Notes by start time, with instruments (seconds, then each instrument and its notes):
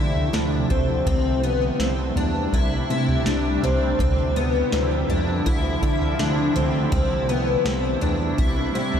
Already playing: ambient pad C3 D3 F3 A3 E4, analog synth bass D3, twelve-string acoustic guitar E4
0.16 floor tom
0.33 analog synth bass D2, twelve-string acoustic guitar D4, snare
0.70 analog synth bass D2, twelve-string acoustic guitar C4, kick, floor tom
1.07 analog synth bass C2, ambient pad C3 G3 D4, twelve-string acoustic guitar C4, kick, floor tom
1.44 twelve-string acoustic guitar B3
1.80 analog synth bass C2, twelve-string acoustic guitar C4, snare
2.16 analog synth bass E2, twelve-string acoustic guitar D4, floor tom
2.53 analog synth bass C2, twelve-string acoustic guitar E4, kick, floor tom
2.90 analog synth bass C3, twelve-string acoustic guitar E4
3.08 floor tom
3.26 analog synth bass C2, twelve-string acoustic guitar D4, snare
3.62 analog synth bass C2, twelve-string acoustic guitar C4, floor tom
3.99 analog synth bass D2, ambient pad C3 D3 F3 E4, twelve-string acoustic guitar C4, kick, floor tom
4.36 twelve-string acoustic guitar B3
4.72 analog synth bass D2, twelve-string acoustic guitar C4, snare
5.09 analog synth bass F2, twelve-string acoustic guitar D4, floor tom
5.46 analog synth bass D2, twelve-string acoustic guitar E4, kick, floor tom
5.82 analog synth bass D3, twelve-string acoustic guitar E4, kick
6.01 floor tom
6.19 analog synth bass D2, twelve-string acoustic guitar D4, snare
6.55 analog synth bass D2, twelve-string acoustic guitar C4, floor tom
6.92 analog synth bass C2, ambient pad C3 G3 A3 D4 E4, twelve-string acoustic guitar C4, kick, floor tom
7.29 twelve-string acoustic guitar B3
7.65 analog synth bass C2, twelve-string acoustic guitar C4, snare
8.01 analog synth bass E2, twelve-string acoustic guitar D4, floor tom
8.38 analog synth bass C2, twelve-string acoustic guitar E4, kick, floor tom
8.75 analog synth bass C3, twelve-string acoustic guitar E4
8.94 floor tom